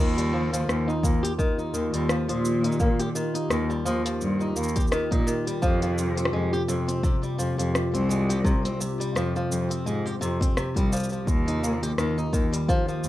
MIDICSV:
0, 0, Header, 1, 5, 480
1, 0, Start_track
1, 0, Key_signature, -3, "major"
1, 0, Tempo, 705882
1, 1903, Time_signature, 4, 2, 24, 8
1, 8898, End_track
2, 0, Start_track
2, 0, Title_t, "Ambient pad"
2, 0, Program_c, 0, 92
2, 0, Note_on_c, 0, 51, 73
2, 0, Note_on_c, 0, 58, 81
2, 0, Note_on_c, 0, 65, 74
2, 0, Note_on_c, 0, 70, 77
2, 629, Note_off_c, 0, 70, 0
2, 686, Note_on_c, 0, 67, 81
2, 3818, Note_off_c, 0, 51, 0
2, 3823, Note_on_c, 0, 48, 81
2, 5051, Note_off_c, 0, 58, 0
2, 7660, Note_on_c, 0, 51, 94
2, 7663, Note_off_c, 0, 48, 0
2, 7707, Note_on_c, 0, 58, 77
2, 8898, Note_off_c, 0, 51, 0
2, 8898, Note_off_c, 0, 58, 0
2, 8898, Note_off_c, 0, 65, 0
2, 8898, Note_off_c, 0, 67, 0
2, 8898, End_track
3, 0, Start_track
3, 0, Title_t, "Steel-string acoustic guitar"
3, 0, Program_c, 1, 25
3, 0, Note_on_c, 1, 51, 76
3, 106, Note_off_c, 1, 51, 0
3, 118, Note_on_c, 1, 55, 64
3, 218, Note_off_c, 1, 55, 0
3, 223, Note_on_c, 1, 53, 87
3, 344, Note_off_c, 1, 53, 0
3, 358, Note_on_c, 1, 53, 72
3, 585, Note_off_c, 1, 53, 0
3, 597, Note_on_c, 1, 63, 72
3, 692, Note_off_c, 1, 63, 0
3, 704, Note_on_c, 1, 58, 67
3, 825, Note_off_c, 1, 58, 0
3, 835, Note_on_c, 1, 67, 94
3, 897, Note_off_c, 1, 67, 0
3, 942, Note_on_c, 1, 51, 92
3, 1063, Note_off_c, 1, 51, 0
3, 1076, Note_on_c, 1, 63, 68
3, 1172, Note_off_c, 1, 63, 0
3, 1181, Note_on_c, 1, 51, 61
3, 1303, Note_off_c, 1, 51, 0
3, 1318, Note_on_c, 1, 55, 67
3, 1418, Note_off_c, 1, 55, 0
3, 1423, Note_on_c, 1, 53, 83
3, 1544, Note_off_c, 1, 53, 0
3, 1554, Note_on_c, 1, 53, 65
3, 1782, Note_off_c, 1, 53, 0
3, 1797, Note_on_c, 1, 63, 62
3, 1893, Note_off_c, 1, 63, 0
3, 1902, Note_on_c, 1, 58, 75
3, 2024, Note_off_c, 1, 58, 0
3, 2036, Note_on_c, 1, 67, 90
3, 2097, Note_off_c, 1, 67, 0
3, 2143, Note_on_c, 1, 51, 80
3, 2264, Note_off_c, 1, 51, 0
3, 2273, Note_on_c, 1, 63, 72
3, 2370, Note_off_c, 1, 63, 0
3, 2382, Note_on_c, 1, 51, 76
3, 2504, Note_off_c, 1, 51, 0
3, 2514, Note_on_c, 1, 55, 69
3, 2616, Note_off_c, 1, 55, 0
3, 2621, Note_on_c, 1, 53, 91
3, 2743, Note_off_c, 1, 53, 0
3, 2755, Note_on_c, 1, 53, 69
3, 2983, Note_off_c, 1, 53, 0
3, 2997, Note_on_c, 1, 63, 75
3, 3093, Note_off_c, 1, 63, 0
3, 3102, Note_on_c, 1, 58, 60
3, 3224, Note_off_c, 1, 58, 0
3, 3235, Note_on_c, 1, 67, 80
3, 3296, Note_off_c, 1, 67, 0
3, 3342, Note_on_c, 1, 51, 85
3, 3464, Note_off_c, 1, 51, 0
3, 3473, Note_on_c, 1, 63, 64
3, 3570, Note_off_c, 1, 63, 0
3, 3581, Note_on_c, 1, 51, 73
3, 3703, Note_off_c, 1, 51, 0
3, 3719, Note_on_c, 1, 55, 67
3, 3819, Note_off_c, 1, 55, 0
3, 3822, Note_on_c, 1, 53, 96
3, 3944, Note_off_c, 1, 53, 0
3, 3959, Note_on_c, 1, 53, 74
3, 4185, Note_off_c, 1, 53, 0
3, 4200, Note_on_c, 1, 60, 65
3, 4294, Note_off_c, 1, 60, 0
3, 4304, Note_on_c, 1, 56, 76
3, 4425, Note_off_c, 1, 56, 0
3, 4440, Note_on_c, 1, 67, 98
3, 4499, Note_off_c, 1, 67, 0
3, 4544, Note_on_c, 1, 48, 92
3, 4665, Note_off_c, 1, 48, 0
3, 4677, Note_on_c, 1, 60, 65
3, 4773, Note_off_c, 1, 60, 0
3, 4781, Note_on_c, 1, 48, 77
3, 4903, Note_off_c, 1, 48, 0
3, 4915, Note_on_c, 1, 55, 70
3, 5017, Note_off_c, 1, 55, 0
3, 5021, Note_on_c, 1, 53, 79
3, 5143, Note_off_c, 1, 53, 0
3, 5156, Note_on_c, 1, 53, 63
3, 5383, Note_off_c, 1, 53, 0
3, 5397, Note_on_c, 1, 60, 67
3, 5492, Note_off_c, 1, 60, 0
3, 5502, Note_on_c, 1, 56, 72
3, 5624, Note_off_c, 1, 56, 0
3, 5639, Note_on_c, 1, 67, 83
3, 5699, Note_off_c, 1, 67, 0
3, 5742, Note_on_c, 1, 48, 87
3, 5864, Note_off_c, 1, 48, 0
3, 5880, Note_on_c, 1, 60, 67
3, 5974, Note_off_c, 1, 60, 0
3, 5985, Note_on_c, 1, 48, 63
3, 6105, Note_off_c, 1, 48, 0
3, 6120, Note_on_c, 1, 55, 68
3, 6219, Note_off_c, 1, 55, 0
3, 6224, Note_on_c, 1, 53, 93
3, 6345, Note_off_c, 1, 53, 0
3, 6365, Note_on_c, 1, 53, 71
3, 6588, Note_off_c, 1, 53, 0
3, 6598, Note_on_c, 1, 60, 70
3, 6693, Note_off_c, 1, 60, 0
3, 6706, Note_on_c, 1, 56, 76
3, 6826, Note_off_c, 1, 56, 0
3, 6838, Note_on_c, 1, 67, 84
3, 6898, Note_off_c, 1, 67, 0
3, 6942, Note_on_c, 1, 48, 84
3, 7064, Note_off_c, 1, 48, 0
3, 7077, Note_on_c, 1, 60, 67
3, 7173, Note_off_c, 1, 60, 0
3, 7186, Note_on_c, 1, 48, 71
3, 7306, Note_off_c, 1, 48, 0
3, 7323, Note_on_c, 1, 55, 67
3, 7421, Note_off_c, 1, 55, 0
3, 7428, Note_on_c, 1, 53, 90
3, 7547, Note_off_c, 1, 53, 0
3, 7560, Note_on_c, 1, 53, 61
3, 7665, Note_off_c, 1, 53, 0
3, 7803, Note_on_c, 1, 63, 67
3, 7895, Note_off_c, 1, 63, 0
3, 7909, Note_on_c, 1, 58, 65
3, 8027, Note_off_c, 1, 58, 0
3, 8043, Note_on_c, 1, 67, 88
3, 8100, Note_off_c, 1, 67, 0
3, 8147, Note_on_c, 1, 51, 89
3, 8266, Note_off_c, 1, 51, 0
3, 8281, Note_on_c, 1, 63, 76
3, 8374, Note_off_c, 1, 63, 0
3, 8382, Note_on_c, 1, 51, 64
3, 8504, Note_off_c, 1, 51, 0
3, 8517, Note_on_c, 1, 55, 65
3, 8618, Note_off_c, 1, 55, 0
3, 8628, Note_on_c, 1, 53, 96
3, 8747, Note_off_c, 1, 53, 0
3, 8898, End_track
4, 0, Start_track
4, 0, Title_t, "Cello"
4, 0, Program_c, 2, 42
4, 0, Note_on_c, 2, 39, 94
4, 410, Note_off_c, 2, 39, 0
4, 462, Note_on_c, 2, 39, 84
4, 555, Note_off_c, 2, 39, 0
4, 702, Note_on_c, 2, 39, 80
4, 795, Note_off_c, 2, 39, 0
4, 1182, Note_on_c, 2, 39, 67
4, 1275, Note_off_c, 2, 39, 0
4, 1315, Note_on_c, 2, 39, 82
4, 1389, Note_off_c, 2, 39, 0
4, 1555, Note_on_c, 2, 46, 91
4, 2088, Note_off_c, 2, 46, 0
4, 2380, Note_on_c, 2, 39, 92
4, 2474, Note_off_c, 2, 39, 0
4, 2621, Note_on_c, 2, 39, 85
4, 2714, Note_off_c, 2, 39, 0
4, 2862, Note_on_c, 2, 43, 80
4, 3036, Note_off_c, 2, 43, 0
4, 3100, Note_on_c, 2, 39, 80
4, 3194, Note_off_c, 2, 39, 0
4, 3478, Note_on_c, 2, 46, 86
4, 3550, Note_off_c, 2, 46, 0
4, 3823, Note_on_c, 2, 41, 92
4, 4250, Note_off_c, 2, 41, 0
4, 4302, Note_on_c, 2, 41, 88
4, 4395, Note_off_c, 2, 41, 0
4, 4546, Note_on_c, 2, 41, 83
4, 4637, Note_off_c, 2, 41, 0
4, 5024, Note_on_c, 2, 41, 72
4, 5116, Note_off_c, 2, 41, 0
4, 5156, Note_on_c, 2, 41, 85
4, 5229, Note_off_c, 2, 41, 0
4, 5393, Note_on_c, 2, 36, 101
4, 5928, Note_off_c, 2, 36, 0
4, 6222, Note_on_c, 2, 41, 79
4, 6315, Note_off_c, 2, 41, 0
4, 6460, Note_on_c, 2, 41, 78
4, 6554, Note_off_c, 2, 41, 0
4, 6698, Note_on_c, 2, 44, 80
4, 6874, Note_off_c, 2, 44, 0
4, 6946, Note_on_c, 2, 41, 80
4, 7037, Note_off_c, 2, 41, 0
4, 7317, Note_on_c, 2, 36, 79
4, 7390, Note_off_c, 2, 36, 0
4, 7664, Note_on_c, 2, 39, 92
4, 8091, Note_off_c, 2, 39, 0
4, 8143, Note_on_c, 2, 39, 86
4, 8235, Note_off_c, 2, 39, 0
4, 8383, Note_on_c, 2, 39, 78
4, 8475, Note_off_c, 2, 39, 0
4, 8863, Note_on_c, 2, 39, 70
4, 8898, Note_off_c, 2, 39, 0
4, 8898, End_track
5, 0, Start_track
5, 0, Title_t, "Drums"
5, 123, Note_on_c, 9, 46, 45
5, 125, Note_on_c, 9, 82, 19
5, 191, Note_off_c, 9, 46, 0
5, 193, Note_off_c, 9, 82, 0
5, 365, Note_on_c, 9, 46, 51
5, 367, Note_on_c, 9, 82, 67
5, 433, Note_off_c, 9, 46, 0
5, 435, Note_off_c, 9, 82, 0
5, 471, Note_on_c, 9, 37, 92
5, 473, Note_on_c, 9, 82, 38
5, 539, Note_off_c, 9, 37, 0
5, 541, Note_off_c, 9, 82, 0
5, 608, Note_on_c, 9, 82, 19
5, 676, Note_off_c, 9, 82, 0
5, 703, Note_on_c, 9, 36, 94
5, 710, Note_on_c, 9, 82, 66
5, 771, Note_off_c, 9, 36, 0
5, 778, Note_off_c, 9, 82, 0
5, 847, Note_on_c, 9, 46, 54
5, 849, Note_on_c, 9, 82, 31
5, 915, Note_off_c, 9, 46, 0
5, 917, Note_off_c, 9, 82, 0
5, 944, Note_on_c, 9, 36, 93
5, 948, Note_on_c, 9, 82, 38
5, 1012, Note_off_c, 9, 36, 0
5, 1016, Note_off_c, 9, 82, 0
5, 1081, Note_on_c, 9, 82, 20
5, 1149, Note_off_c, 9, 82, 0
5, 1185, Note_on_c, 9, 82, 71
5, 1253, Note_off_c, 9, 82, 0
5, 1317, Note_on_c, 9, 46, 49
5, 1319, Note_on_c, 9, 82, 31
5, 1385, Note_off_c, 9, 46, 0
5, 1387, Note_off_c, 9, 82, 0
5, 1424, Note_on_c, 9, 37, 99
5, 1426, Note_on_c, 9, 82, 42
5, 1492, Note_off_c, 9, 37, 0
5, 1494, Note_off_c, 9, 82, 0
5, 1559, Note_on_c, 9, 46, 41
5, 1561, Note_on_c, 9, 82, 20
5, 1627, Note_off_c, 9, 46, 0
5, 1629, Note_off_c, 9, 82, 0
5, 1666, Note_on_c, 9, 82, 65
5, 1734, Note_off_c, 9, 82, 0
5, 1797, Note_on_c, 9, 46, 46
5, 1849, Note_on_c, 9, 82, 28
5, 1865, Note_off_c, 9, 46, 0
5, 1903, Note_off_c, 9, 82, 0
5, 1903, Note_on_c, 9, 82, 41
5, 1904, Note_on_c, 9, 36, 109
5, 1971, Note_off_c, 9, 82, 0
5, 1972, Note_off_c, 9, 36, 0
5, 2037, Note_on_c, 9, 46, 43
5, 2039, Note_on_c, 9, 82, 21
5, 2105, Note_off_c, 9, 46, 0
5, 2107, Note_off_c, 9, 82, 0
5, 2146, Note_on_c, 9, 82, 74
5, 2214, Note_off_c, 9, 82, 0
5, 2278, Note_on_c, 9, 46, 51
5, 2280, Note_on_c, 9, 82, 32
5, 2346, Note_off_c, 9, 46, 0
5, 2348, Note_off_c, 9, 82, 0
5, 2383, Note_on_c, 9, 37, 95
5, 2385, Note_on_c, 9, 82, 44
5, 2451, Note_off_c, 9, 37, 0
5, 2453, Note_off_c, 9, 82, 0
5, 2519, Note_on_c, 9, 82, 21
5, 2587, Note_off_c, 9, 82, 0
5, 2626, Note_on_c, 9, 82, 71
5, 2694, Note_off_c, 9, 82, 0
5, 2759, Note_on_c, 9, 46, 52
5, 2761, Note_on_c, 9, 82, 30
5, 2827, Note_off_c, 9, 46, 0
5, 2829, Note_off_c, 9, 82, 0
5, 2864, Note_on_c, 9, 82, 40
5, 2932, Note_off_c, 9, 82, 0
5, 2995, Note_on_c, 9, 82, 22
5, 3063, Note_off_c, 9, 82, 0
5, 3102, Note_on_c, 9, 82, 71
5, 3150, Note_off_c, 9, 82, 0
5, 3150, Note_on_c, 9, 82, 55
5, 3185, Note_off_c, 9, 82, 0
5, 3185, Note_on_c, 9, 82, 47
5, 3236, Note_on_c, 9, 46, 50
5, 3238, Note_off_c, 9, 82, 0
5, 3238, Note_on_c, 9, 82, 38
5, 3240, Note_on_c, 9, 36, 100
5, 3265, Note_off_c, 9, 82, 0
5, 3265, Note_on_c, 9, 82, 30
5, 3304, Note_off_c, 9, 46, 0
5, 3308, Note_off_c, 9, 36, 0
5, 3313, Note_off_c, 9, 82, 0
5, 3313, Note_on_c, 9, 82, 26
5, 3345, Note_on_c, 9, 37, 97
5, 3347, Note_off_c, 9, 82, 0
5, 3347, Note_on_c, 9, 82, 42
5, 3413, Note_off_c, 9, 37, 0
5, 3415, Note_off_c, 9, 82, 0
5, 3480, Note_on_c, 9, 36, 95
5, 3482, Note_on_c, 9, 46, 39
5, 3484, Note_on_c, 9, 82, 21
5, 3548, Note_off_c, 9, 36, 0
5, 3550, Note_off_c, 9, 46, 0
5, 3552, Note_off_c, 9, 82, 0
5, 3587, Note_on_c, 9, 82, 72
5, 3655, Note_off_c, 9, 82, 0
5, 3722, Note_on_c, 9, 46, 48
5, 3724, Note_on_c, 9, 82, 31
5, 3790, Note_off_c, 9, 46, 0
5, 3792, Note_off_c, 9, 82, 0
5, 3825, Note_on_c, 9, 36, 111
5, 3825, Note_on_c, 9, 82, 40
5, 3893, Note_off_c, 9, 36, 0
5, 3893, Note_off_c, 9, 82, 0
5, 3959, Note_on_c, 9, 46, 40
5, 3961, Note_on_c, 9, 82, 22
5, 4027, Note_off_c, 9, 46, 0
5, 4029, Note_off_c, 9, 82, 0
5, 4067, Note_on_c, 9, 82, 73
5, 4135, Note_off_c, 9, 82, 0
5, 4199, Note_on_c, 9, 46, 50
5, 4201, Note_on_c, 9, 82, 31
5, 4252, Note_on_c, 9, 37, 96
5, 4267, Note_off_c, 9, 46, 0
5, 4269, Note_off_c, 9, 82, 0
5, 4320, Note_off_c, 9, 37, 0
5, 4445, Note_on_c, 9, 82, 21
5, 4513, Note_off_c, 9, 82, 0
5, 4549, Note_on_c, 9, 82, 68
5, 4617, Note_off_c, 9, 82, 0
5, 4682, Note_on_c, 9, 46, 50
5, 4684, Note_on_c, 9, 82, 33
5, 4750, Note_off_c, 9, 46, 0
5, 4752, Note_off_c, 9, 82, 0
5, 4783, Note_on_c, 9, 36, 105
5, 4788, Note_on_c, 9, 82, 44
5, 4851, Note_off_c, 9, 36, 0
5, 4856, Note_off_c, 9, 82, 0
5, 4920, Note_on_c, 9, 82, 21
5, 4988, Note_off_c, 9, 82, 0
5, 5028, Note_on_c, 9, 82, 72
5, 5096, Note_off_c, 9, 82, 0
5, 5164, Note_on_c, 9, 46, 50
5, 5166, Note_on_c, 9, 82, 29
5, 5232, Note_off_c, 9, 46, 0
5, 5234, Note_off_c, 9, 82, 0
5, 5270, Note_on_c, 9, 37, 102
5, 5272, Note_on_c, 9, 82, 47
5, 5338, Note_off_c, 9, 37, 0
5, 5340, Note_off_c, 9, 82, 0
5, 5403, Note_on_c, 9, 46, 36
5, 5405, Note_on_c, 9, 82, 22
5, 5471, Note_off_c, 9, 46, 0
5, 5473, Note_off_c, 9, 82, 0
5, 5513, Note_on_c, 9, 82, 76
5, 5581, Note_off_c, 9, 82, 0
5, 5645, Note_on_c, 9, 46, 47
5, 5647, Note_on_c, 9, 82, 28
5, 5713, Note_off_c, 9, 46, 0
5, 5715, Note_off_c, 9, 82, 0
5, 5743, Note_on_c, 9, 36, 115
5, 5754, Note_on_c, 9, 82, 41
5, 5811, Note_off_c, 9, 36, 0
5, 5822, Note_off_c, 9, 82, 0
5, 5883, Note_on_c, 9, 46, 37
5, 5885, Note_on_c, 9, 82, 20
5, 5951, Note_off_c, 9, 46, 0
5, 5953, Note_off_c, 9, 82, 0
5, 5990, Note_on_c, 9, 82, 73
5, 6058, Note_off_c, 9, 82, 0
5, 6127, Note_on_c, 9, 46, 45
5, 6129, Note_on_c, 9, 82, 32
5, 6195, Note_off_c, 9, 46, 0
5, 6197, Note_off_c, 9, 82, 0
5, 6230, Note_on_c, 9, 37, 91
5, 6232, Note_on_c, 9, 82, 40
5, 6298, Note_off_c, 9, 37, 0
5, 6300, Note_off_c, 9, 82, 0
5, 6364, Note_on_c, 9, 82, 21
5, 6432, Note_off_c, 9, 82, 0
5, 6472, Note_on_c, 9, 82, 72
5, 6540, Note_off_c, 9, 82, 0
5, 6603, Note_on_c, 9, 46, 49
5, 6605, Note_on_c, 9, 82, 31
5, 6671, Note_off_c, 9, 46, 0
5, 6673, Note_off_c, 9, 82, 0
5, 6712, Note_on_c, 9, 82, 41
5, 6780, Note_off_c, 9, 82, 0
5, 6847, Note_on_c, 9, 82, 20
5, 6915, Note_off_c, 9, 82, 0
5, 6952, Note_on_c, 9, 82, 74
5, 7020, Note_off_c, 9, 82, 0
5, 7078, Note_on_c, 9, 36, 100
5, 7088, Note_on_c, 9, 46, 48
5, 7090, Note_on_c, 9, 82, 32
5, 7146, Note_off_c, 9, 36, 0
5, 7156, Note_off_c, 9, 46, 0
5, 7158, Note_off_c, 9, 82, 0
5, 7188, Note_on_c, 9, 37, 89
5, 7190, Note_on_c, 9, 82, 43
5, 7256, Note_off_c, 9, 37, 0
5, 7258, Note_off_c, 9, 82, 0
5, 7318, Note_on_c, 9, 36, 93
5, 7321, Note_on_c, 9, 46, 39
5, 7323, Note_on_c, 9, 82, 22
5, 7386, Note_off_c, 9, 36, 0
5, 7389, Note_off_c, 9, 46, 0
5, 7391, Note_off_c, 9, 82, 0
5, 7430, Note_on_c, 9, 82, 68
5, 7454, Note_off_c, 9, 82, 0
5, 7454, Note_on_c, 9, 82, 54
5, 7476, Note_off_c, 9, 82, 0
5, 7476, Note_on_c, 9, 82, 46
5, 7503, Note_off_c, 9, 82, 0
5, 7503, Note_on_c, 9, 82, 40
5, 7510, Note_off_c, 9, 82, 0
5, 7510, Note_on_c, 9, 82, 32
5, 7543, Note_off_c, 9, 82, 0
5, 7543, Note_on_c, 9, 82, 25
5, 7566, Note_off_c, 9, 82, 0
5, 7566, Note_on_c, 9, 82, 29
5, 7634, Note_off_c, 9, 82, 0
5, 7666, Note_on_c, 9, 36, 110
5, 7670, Note_on_c, 9, 82, 41
5, 7734, Note_off_c, 9, 36, 0
5, 7738, Note_off_c, 9, 82, 0
5, 7806, Note_on_c, 9, 46, 39
5, 7808, Note_on_c, 9, 82, 20
5, 7874, Note_off_c, 9, 46, 0
5, 7876, Note_off_c, 9, 82, 0
5, 7914, Note_on_c, 9, 82, 76
5, 7982, Note_off_c, 9, 82, 0
5, 8046, Note_on_c, 9, 46, 47
5, 8048, Note_on_c, 9, 82, 30
5, 8114, Note_off_c, 9, 46, 0
5, 8116, Note_off_c, 9, 82, 0
5, 8148, Note_on_c, 9, 37, 84
5, 8150, Note_on_c, 9, 82, 41
5, 8216, Note_off_c, 9, 37, 0
5, 8218, Note_off_c, 9, 82, 0
5, 8284, Note_on_c, 9, 82, 21
5, 8352, Note_off_c, 9, 82, 0
5, 8386, Note_on_c, 9, 36, 97
5, 8390, Note_on_c, 9, 82, 69
5, 8454, Note_off_c, 9, 36, 0
5, 8458, Note_off_c, 9, 82, 0
5, 8524, Note_on_c, 9, 46, 51
5, 8526, Note_on_c, 9, 82, 31
5, 8592, Note_off_c, 9, 46, 0
5, 8594, Note_off_c, 9, 82, 0
5, 8626, Note_on_c, 9, 36, 92
5, 8632, Note_on_c, 9, 82, 40
5, 8694, Note_off_c, 9, 36, 0
5, 8700, Note_off_c, 9, 82, 0
5, 8762, Note_on_c, 9, 82, 20
5, 8830, Note_off_c, 9, 82, 0
5, 8866, Note_on_c, 9, 82, 73
5, 8898, Note_off_c, 9, 82, 0
5, 8898, End_track
0, 0, End_of_file